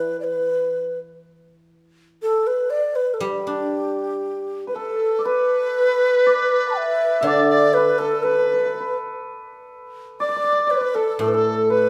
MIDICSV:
0, 0, Header, 1, 5, 480
1, 0, Start_track
1, 0, Tempo, 983607
1, 610, Time_signature, 2, 2, 24, 8
1, 1572, Tempo, 1015228
1, 3012, Tempo, 990099
1, 5740, End_track
2, 0, Start_track
2, 0, Title_t, "Dizi"
2, 0, Program_c, 0, 73
2, 2286, Note_on_c, 0, 69, 58
2, 2537, Note_on_c, 0, 71, 88
2, 2544, Note_off_c, 0, 69, 0
2, 3484, Note_on_c, 0, 74, 85
2, 3491, Note_off_c, 0, 71, 0
2, 3606, Note_off_c, 0, 74, 0
2, 3611, Note_on_c, 0, 74, 77
2, 3726, Note_on_c, 0, 71, 69
2, 3733, Note_off_c, 0, 74, 0
2, 3849, Note_on_c, 0, 69, 69
2, 3857, Note_off_c, 0, 71, 0
2, 3966, Note_on_c, 0, 71, 72
2, 3973, Note_off_c, 0, 69, 0
2, 4323, Note_off_c, 0, 71, 0
2, 4921, Note_on_c, 0, 74, 65
2, 5165, Note_on_c, 0, 71, 59
2, 5172, Note_off_c, 0, 74, 0
2, 5288, Note_on_c, 0, 69, 56
2, 5296, Note_off_c, 0, 71, 0
2, 5403, Note_off_c, 0, 69, 0
2, 5406, Note_on_c, 0, 69, 79
2, 5468, Note_off_c, 0, 69, 0
2, 5477, Note_on_c, 0, 69, 70
2, 5639, Note_off_c, 0, 69, 0
2, 5653, Note_on_c, 0, 71, 58
2, 5740, Note_off_c, 0, 71, 0
2, 5740, End_track
3, 0, Start_track
3, 0, Title_t, "Hammered dulcimer"
3, 0, Program_c, 1, 15
3, 2258, Note_on_c, 1, 71, 43
3, 2298, Note_on_c, 1, 69, 57
3, 2502, Note_on_c, 1, 74, 45
3, 2531, Note_off_c, 1, 71, 0
3, 2533, Note_on_c, 1, 71, 67
3, 3009, Note_off_c, 1, 74, 0
3, 3011, Note_on_c, 1, 74, 79
3, 3468, Note_on_c, 1, 76, 61
3, 3497, Note_off_c, 1, 74, 0
3, 3499, Note_on_c, 1, 74, 73
3, 3697, Note_off_c, 1, 69, 0
3, 3739, Note_off_c, 1, 71, 0
3, 3741, Note_on_c, 1, 71, 67
3, 3853, Note_on_c, 1, 69, 58
3, 3970, Note_off_c, 1, 71, 0
3, 3972, Note_on_c, 1, 71, 62
3, 4001, Note_off_c, 1, 71, 0
3, 4003, Note_on_c, 1, 71, 39
3, 4040, Note_off_c, 1, 71, 0
3, 4042, Note_on_c, 1, 71, 45
3, 4071, Note_off_c, 1, 71, 0
3, 4073, Note_on_c, 1, 71, 39
3, 4109, Note_off_c, 1, 71, 0
3, 4111, Note_on_c, 1, 71, 41
3, 4140, Note_off_c, 1, 71, 0
3, 4142, Note_on_c, 1, 71, 34
3, 4170, Note_off_c, 1, 71, 0
3, 4171, Note_on_c, 1, 71, 40
3, 4210, Note_off_c, 1, 71, 0
3, 4211, Note_on_c, 1, 71, 35
3, 4240, Note_off_c, 1, 71, 0
3, 4242, Note_on_c, 1, 71, 47
3, 4579, Note_off_c, 1, 76, 0
3, 4692, Note_off_c, 1, 74, 0
3, 4919, Note_on_c, 1, 74, 70
3, 4960, Note_off_c, 1, 74, 0
3, 4962, Note_on_c, 1, 74, 46
3, 4996, Note_off_c, 1, 74, 0
3, 4998, Note_on_c, 1, 74, 53
3, 5033, Note_off_c, 1, 74, 0
3, 5035, Note_on_c, 1, 74, 44
3, 5074, Note_off_c, 1, 74, 0
3, 5076, Note_on_c, 1, 74, 46
3, 5106, Note_off_c, 1, 74, 0
3, 5108, Note_on_c, 1, 74, 39
3, 5144, Note_off_c, 1, 74, 0
3, 5146, Note_on_c, 1, 74, 45
3, 5171, Note_off_c, 1, 74, 0
3, 5173, Note_on_c, 1, 74, 43
3, 5212, Note_off_c, 1, 74, 0
3, 5214, Note_on_c, 1, 74, 47
3, 5271, Note_off_c, 1, 69, 0
3, 5283, Note_on_c, 1, 69, 59
3, 5406, Note_off_c, 1, 69, 0
3, 5407, Note_on_c, 1, 69, 54
3, 5471, Note_off_c, 1, 69, 0
3, 5472, Note_on_c, 1, 69, 49
3, 5563, Note_off_c, 1, 71, 0
3, 5647, Note_on_c, 1, 71, 60
3, 5740, Note_off_c, 1, 69, 0
3, 5740, Note_off_c, 1, 71, 0
3, 5740, Note_off_c, 1, 74, 0
3, 5740, End_track
4, 0, Start_track
4, 0, Title_t, "Xiao"
4, 0, Program_c, 2, 77
4, 0, Note_on_c, 2, 71, 74
4, 93, Note_off_c, 2, 71, 0
4, 96, Note_on_c, 2, 74, 49
4, 116, Note_on_c, 2, 71, 72
4, 123, Note_off_c, 2, 74, 0
4, 483, Note_off_c, 2, 71, 0
4, 1085, Note_on_c, 2, 69, 80
4, 1204, Note_on_c, 2, 71, 75
4, 1211, Note_off_c, 2, 69, 0
4, 1318, Note_on_c, 2, 74, 87
4, 1325, Note_off_c, 2, 71, 0
4, 1442, Note_on_c, 2, 71, 76
4, 1449, Note_off_c, 2, 74, 0
4, 1531, Note_on_c, 2, 69, 49
4, 1538, Note_off_c, 2, 71, 0
4, 1568, Note_on_c, 2, 67, 73
4, 1575, Note_off_c, 2, 69, 0
4, 2257, Note_off_c, 2, 67, 0
4, 2261, Note_on_c, 2, 71, 43
4, 2294, Note_on_c, 2, 69, 61
4, 2301, Note_off_c, 2, 71, 0
4, 2535, Note_on_c, 2, 71, 79
4, 2542, Note_off_c, 2, 69, 0
4, 3209, Note_off_c, 2, 71, 0
4, 3212, Note_on_c, 2, 83, 39
4, 3222, Note_off_c, 2, 83, 0
4, 3224, Note_on_c, 2, 81, 41
4, 3240, Note_off_c, 2, 81, 0
4, 3242, Note_on_c, 2, 79, 41
4, 3248, Note_on_c, 2, 76, 84
4, 3256, Note_off_c, 2, 79, 0
4, 3482, Note_on_c, 2, 74, 71
4, 3490, Note_off_c, 2, 76, 0
4, 3602, Note_off_c, 2, 74, 0
4, 3605, Note_on_c, 2, 74, 83
4, 3722, Note_on_c, 2, 71, 82
4, 3729, Note_off_c, 2, 74, 0
4, 3843, Note_on_c, 2, 69, 71
4, 3851, Note_off_c, 2, 71, 0
4, 3962, Note_on_c, 2, 71, 74
4, 3970, Note_off_c, 2, 69, 0
4, 4322, Note_off_c, 2, 71, 0
4, 4919, Note_on_c, 2, 74, 80
4, 5160, Note_on_c, 2, 71, 66
4, 5167, Note_off_c, 2, 74, 0
4, 5280, Note_on_c, 2, 69, 74
4, 5287, Note_off_c, 2, 71, 0
4, 5402, Note_off_c, 2, 69, 0
4, 5405, Note_on_c, 2, 69, 62
4, 5443, Note_on_c, 2, 71, 54
4, 5450, Note_off_c, 2, 69, 0
4, 5472, Note_on_c, 2, 69, 61
4, 5479, Note_off_c, 2, 71, 0
4, 5645, Note_on_c, 2, 71, 73
4, 5653, Note_off_c, 2, 69, 0
4, 5740, Note_off_c, 2, 71, 0
4, 5740, End_track
5, 0, Start_track
5, 0, Title_t, "Guzheng"
5, 0, Program_c, 3, 107
5, 0, Note_on_c, 3, 52, 53
5, 1088, Note_off_c, 3, 52, 0
5, 1564, Note_on_c, 3, 55, 55
5, 1689, Note_on_c, 3, 62, 38
5, 2653, Note_off_c, 3, 62, 0
5, 3007, Note_off_c, 3, 55, 0
5, 3477, Note_on_c, 3, 50, 52
5, 4915, Note_off_c, 3, 50, 0
5, 5399, Note_on_c, 3, 45, 52
5, 5740, Note_off_c, 3, 45, 0
5, 5740, End_track
0, 0, End_of_file